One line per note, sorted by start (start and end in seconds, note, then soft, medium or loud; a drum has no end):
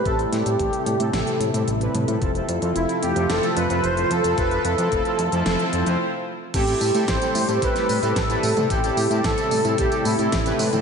0.00 5.96 C3 medium
0.00 2.18 G3 medium
0.00 2.18 A3 medium
0.00 5.96 E4 medium
0.05 0.26 A1 loud
0.05 0.16 A2 medium
0.05 0.16 C4 medium
0.05 0.16 E4 medium
0.05 0.16 G4 medium
0.05 0.18 A4 loud
0.05 0.16 A4 loud
0.05 2.20 A4 medium
0.05 kick loud
0.05 closed hi-hat medium
0.19 0.43 A2 medium
0.19 0.43 C4 medium
0.19 0.43 E4 medium
0.19 0.43 G4 medium
0.19 0.43 A4 loud
0.19 closed hi-hat soft
0.32 0.43 A2 loud
0.32 1.37 G4 medium
0.32 snare soft
0.32 closed hi-hat loud
0.46 0.56 A2 loud
0.46 0.70 A2 medium
0.46 0.70 C4 medium
0.46 0.70 E4 medium
0.46 0.70 G4 medium
0.46 0.70 A4 loud
0.46 closed hi-hat medium
0.59 0.70 A1 loud
0.59 kick medium
0.59 closed hi-hat medium
0.73 0.89 A2 medium
0.73 0.89 C4 medium
0.73 0.89 E4 medium
0.73 0.89 G4 medium
0.73 0.89 A4 medium
0.73 closed hi-hat soft
0.86 0.97 A2 medium
0.86 closed hi-hat medium
1.00 1.10 A2 medium
1.00 1.12 A2 medium
1.00 1.12 C4 medium
1.00 1.12 E4 medium
1.00 1.12 G4 medium
1.00 1.12 A4 loud
1.00 closed hi-hat medium
1.13 1.24 A1 loud
1.13 1.25 A2 medium
1.13 1.25 C4 medium
1.13 1.25 E4 medium
1.13 1.25 G4 medium
1.13 1.25 A4 loud
1.13 snare loud
1.13 closed hi-hat medium
1.27 1.51 A2 medium
1.27 1.51 C4 medium
1.27 1.51 E4 medium
1.27 1.51 G4 medium
1.27 1.51 A4 loud
1.27 closed hi-hat soft
1.40 1.51 A2 loud
1.40 closed hi-hat medium
1.54 1.64 A2 loud
1.54 1.70 A2 medium
1.54 1.70 C4 medium
1.54 1.70 E4 medium
1.54 1.70 G4 medium
1.54 1.70 A4 loud
1.54 closed hi-hat medium
1.67 1.88 A1 medium
1.67 closed hi-hat medium
1.81 2.04 A2 loud
1.81 2.04 C4 medium
1.81 2.04 E4 medium
1.81 2.04 G4 medium
1.81 2.04 B4 loud
1.81 closed hi-hat soft
1.95 2.05 A2 loud
1.95 closed hi-hat medium
1.95 mid tom medium
2.08 2.19 A2 loud
2.08 2.20 F3 medium
2.08 2.20 C4 medium
2.08 2.20 E4 medium
2.08 2.20 G4 medium
2.08 2.20 A4 loud
2.08 closed hi-hat medium
2.22 2.43 F1 loud
2.22 2.32 F3 medium
2.22 5.96 F3 medium
2.22 5.96 A3 medium
2.22 2.32 C4 medium
2.22 2.32 E4 medium
2.22 2.32 F4 medium
2.22 5.96 F4 medium
2.22 2.32 A4 loud
2.22 kick loud
2.22 closed hi-hat medium
2.35 2.59 F3 medium
2.35 2.59 C4 medium
2.35 2.59 E4 medium
2.35 2.59 F4 medium
2.35 2.59 A4 loud
2.35 closed hi-hat soft
2.49 2.59 F2 loud
2.49 closed hi-hat medium
2.62 2.73 F2 loud
2.62 2.86 F3 medium
2.62 2.86 C4 medium
2.62 2.86 E4 medium
2.62 2.86 F4 medium
2.62 2.86 A4 loud
2.62 closed hi-hat medium
2.76 2.86 F1 loud
2.76 3.04 E4 medium
2.76 closed hi-hat medium
2.89 3.05 F3 medium
2.89 3.05 C4 medium
2.89 3.05 E4 medium
2.89 3.05 F4 medium
2.89 3.05 A4 medium
2.89 closed hi-hat soft
3.03 3.13 F2 medium
3.03 3.31 G4 medium
3.03 closed hi-hat medium
3.16 3.27 F2 medium
3.16 3.28 F3 loud
3.16 3.28 C4 medium
3.16 3.28 E4 medium
3.16 3.28 F4 medium
3.16 3.28 A4 loud
3.16 closed hi-hat medium
3.30 3.40 F1 medium
3.30 3.41 F3 loud
3.30 3.41 C4 medium
3.30 3.41 E4 medium
3.30 3.41 F4 medium
3.30 3.41 A4 loud
3.30 3.58 A4 loud
3.30 snare loud
3.30 closed hi-hat medium
3.43 3.67 F3 medium
3.43 3.67 C4 medium
3.43 3.67 E4 medium
3.43 3.67 F4 medium
3.43 3.67 A4 loud
3.43 closed hi-hat soft
3.57 3.67 F2 medium
3.57 3.85 B4 loud
3.57 closed hi-hat medium
3.70 3.81 F2 loud
3.70 3.86 F3 loud
3.70 3.86 C4 medium
3.70 3.86 E4 medium
3.70 3.86 F4 medium
3.70 3.86 A4 loud
3.70 closed hi-hat medium
3.84 4.05 F1 medium
3.84 4.09 C5 loud
3.84 closed hi-hat medium
3.97 4.20 F3 loud
3.97 4.20 C4 medium
3.97 4.20 E4 medium
3.97 4.20 F4 medium
3.97 4.20 C5 loud
3.97 closed hi-hat soft
4.11 4.21 F2 medium
4.11 4.39 A4 loud
4.11 closed hi-hat medium
4.24 4.35 F2 medium
4.24 4.36 F3 medium
4.24 4.36 C4 medium
4.24 4.36 E4 medium
4.24 4.36 F4 medium
4.24 4.36 A4 loud
4.24 closed hi-hat medium
4.38 4.59 F1 loud
4.38 4.48 F3 medium
4.38 4.48 C4 medium
4.38 4.48 E4 medium
4.38 4.48 F4 medium
4.38 4.48 A4 loud
4.38 4.63 B4 loud
4.38 kick loud
4.38 closed hi-hat medium
4.51 4.75 F3 medium
4.51 4.75 C4 medium
4.51 4.75 E4 medium
4.51 4.75 F4 medium
4.51 4.75 A4 loud
4.51 closed hi-hat soft
4.65 4.75 F2 loud
4.65 5.69 A4 loud
4.65 closed hi-hat medium
4.78 4.89 F2 loud
4.78 5.02 F3 medium
4.78 5.02 C4 medium
4.78 5.02 E4 medium
4.78 5.02 F4 medium
4.78 5.02 A4 loud
4.78 closed hi-hat medium
4.92 5.02 F1 loud
4.92 kick medium
4.92 closed hi-hat medium
5.05 5.21 F3 medium
5.05 5.21 C4 medium
5.05 5.21 E4 medium
5.05 5.21 F4 medium
5.05 5.21 A4 medium
5.05 closed hi-hat soft
5.19 5.29 F2 medium
5.19 closed hi-hat medium
5.32 5.43 F2 medium
5.32 5.44 F3 loud
5.32 5.44 C4 medium
5.32 5.44 E4 medium
5.32 5.44 F4 medium
5.32 5.44 A4 loud
5.32 closed hi-hat medium
5.46 5.56 F1 loud
5.46 5.57 F3 loud
5.46 5.57 C4 medium
5.46 5.57 E4 medium
5.46 5.57 F4 medium
5.46 5.57 A4 loud
5.46 snare loud
5.46 closed hi-hat medium
5.59 5.70 F3 medium
5.59 5.70 C4 medium
5.59 5.70 E4 medium
5.59 5.70 F4 medium
5.59 5.70 A4 loud
5.59 closed hi-hat soft
5.73 5.83 F2 loud
5.73 5.85 F3 medium
5.73 5.84 C4 medium
5.73 5.85 E4 medium
5.73 5.85 F4 medium
5.73 5.85 C5 medium
5.73 closed hi-hat medium
5.86 5.97 F2 loud
5.86 5.98 F3 loud
5.86 5.98 C4 medium
5.86 5.98 E4 medium
5.86 5.98 F4 medium
5.86 5.98 C5 loud
5.86 closed hi-hat medium
6.54 6.75 A1 loud
6.54 6.64 A2 loud
6.54 10.81 C3 medium
6.54 10.81 G3 medium
6.54 10.81 A3 medium
6.54 6.64 C4 medium
6.54 6.64 E4 medium
6.54 10.81 E4 medium
6.54 6.64 G4 medium
6.54 8.68 G4 medium
6.54 7.10 G4 loud
6.54 6.64 A4 loud
6.54 kick loud
6.54 closed hi-hat medium
6.54 tambourine soft
6.54 crash loud
6.67 6.91 A2 medium
6.67 6.91 C4 medium
6.67 6.91 E4 medium
6.67 6.91 G4 medium
6.67 6.91 A4 loud
6.67 closed hi-hat soft
6.67 tambourine soft
6.81 6.92 A2 loud
6.81 open hi-hat medium
6.81 tambourine medium
6.95 7.05 A2 loud
6.95 7.18 A2 medium
6.95 7.18 C4 medium
6.95 7.18 E4 medium
6.95 7.18 G4 medium
6.95 7.18 A4 loud
6.95 closed hi-hat soft
6.95 tambourine soft
7.08 7.19 A1 loud
7.08 7.58 C5 loud
7.08 kick loud
7.08 snare loud
7.08 closed hi-hat medium
7.08 tambourine soft
7.22 7.37 A2 medium
7.22 7.37 C4 medium
7.22 7.37 E4 medium
7.22 7.37 G4 medium
7.22 7.37 A4 medium
7.22 closed hi-hat soft
7.22 tambourine soft
7.35 7.46 A2 medium
7.35 open hi-hat medium
7.35 tambourine medium
7.48 7.59 A2 medium
7.48 7.60 A2 loud
7.48 7.60 C4 medium
7.48 7.60 E4 medium
7.48 7.60 G4 medium
7.48 7.60 A4 loud
7.48 closed hi-hat soft
7.48 tambourine soft
7.62 7.73 A1 medium
7.62 7.74 A2 loud
7.62 7.74 C4 loud
7.62 7.74 E4 medium
7.62 7.74 G4 medium
7.62 7.74 A4 loud
7.62 8.18 B4 loud
7.62 kick loud
7.62 closed hi-hat loud
7.62 tambourine soft
7.75 7.99 A2 medium
7.75 7.99 C4 medium
7.75 7.99 E4 medium
7.75 7.99 G4 medium
7.75 7.99 A4 loud
7.75 snare soft
7.75 closed hi-hat soft
7.75 tambourine soft
7.89 8.00 A2 medium
7.89 open hi-hat medium
7.89 tambourine medium
8.03 8.18 A2 loud
8.03 8.13 A2 loud
8.03 8.18 C4 medium
8.03 8.18 E4 medium
8.03 8.18 G4 medium
8.03 8.18 A4 loud
8.03 closed hi-hat soft
8.03 tambourine soft
8.16 8.37 A1 medium
8.16 8.72 A4 loud
8.16 kick loud
8.16 snare loud
8.16 closed hi-hat medium
8.16 tambourine soft
8.30 8.53 A2 loud
8.30 8.53 C4 medium
8.30 8.53 E4 medium
8.30 8.53 G4 medium
8.30 8.53 B4 loud
8.30 closed hi-hat soft
8.30 tambourine soft
8.43 8.54 A2 loud
8.43 open hi-hat medium
8.43 tambourine medium
8.57 8.67 A2 medium
8.57 8.68 A2 medium
8.57 8.68 C4 medium
8.57 8.68 E4 medium
8.57 8.68 G4 medium
8.57 8.68 A4 medium
8.57 closed hi-hat soft
8.57 mid tom medium
8.57 tambourine soft
8.70 8.91 A1 loud
8.70 8.80 A2 medium
8.70 8.81 C4 medium
8.70 8.80 E4 medium
8.70 8.81 G4 medium
8.70 9.26 G4 loud
8.70 8.80 A4 loud
8.70 10.81 A4 medium
8.70 kick loud
8.70 closed hi-hat loud
8.70 tambourine soft
8.84 9.08 A2 medium
8.84 9.08 C4 medium
8.84 9.08 E4 medium
8.84 9.08 G4 medium
8.84 9.08 A4 loud
8.84 closed hi-hat soft
8.84 tambourine soft
8.97 9.08 A2 loud
8.97 open hi-hat medium
8.97 tambourine medium
9.10 9.21 A2 loud
9.10 9.35 A2 medium
9.10 9.35 C4 medium
9.10 9.34 E4 medium
9.10 9.35 G4 medium
9.10 9.35 A4 loud
9.10 closed hi-hat soft
9.10 tambourine soft
9.24 9.35 A1 loud
9.24 9.80 A4 loud
9.24 kick loud
9.24 snare loud
9.24 closed hi-hat loud
9.24 tambourine soft
9.38 9.54 A2 medium
9.38 9.54 C4 medium
9.38 9.54 E4 medium
9.38 9.54 G4 medium
9.38 9.54 A4 medium
9.38 closed hi-hat soft
9.38 tambourine soft
9.51 9.62 A2 medium
9.51 open hi-hat medium
9.51 tambourine medium
9.65 9.75 A2 medium
9.65 9.76 A2 loud
9.65 9.76 C4 medium
9.65 9.76 E4 medium
9.65 9.76 G4 medium
9.65 9.76 A4 loud
9.65 closed hi-hat soft
9.65 tambourine soft
9.78 9.89 A1 loud
9.78 9.90 A2 loud
9.78 9.90 C4 medium
9.78 9.90 E4 medium
9.78 9.90 G4 medium
9.78 10.04 G4 loud
9.78 9.90 A4 loud
9.78 kick loud
9.78 closed hi-hat loud
9.78 tambourine soft
9.92 10.16 A2 medium
9.92 10.16 C4 medium
9.92 10.16 E4 medium
9.92 10.16 G4 medium
9.92 10.16 A4 loud
9.92 closed hi-hat soft
9.92 tambourine soft
10.05 10.16 A2 loud
10.05 10.56 E4 medium
10.05 open hi-hat medium
10.05 tambourine medium
10.19 10.29 A2 loud
10.19 10.35 A2 loud
10.19 10.35 C4 medium
10.19 10.35 E4 medium
10.19 10.35 G4 medium
10.19 10.35 A4 loud
10.19 closed hi-hat soft
10.19 tambourine soft
10.32 10.53 A1 loud
10.32 kick loud
10.32 snare loud
10.32 closed hi-hat medium
10.32 tambourine soft
10.46 10.69 A2 medium
10.46 10.69 C4 medium
10.46 10.69 E4 medium
10.46 10.69 G4 medium
10.46 10.69 B4 loud
10.46 closed hi-hat soft
10.46 tambourine soft
10.59 10.70 A2 loud
10.59 open hi-hat medium
10.59 tambourine medium
10.73 10.81 A2 loud
10.73 10.81 F3 medium
10.73 10.81 C4 medium
10.73 10.81 E4 medium
10.73 10.81 G4 medium
10.73 10.81 A4 loud
10.73 closed hi-hat soft
10.73 mid tom medium
10.73 tambourine soft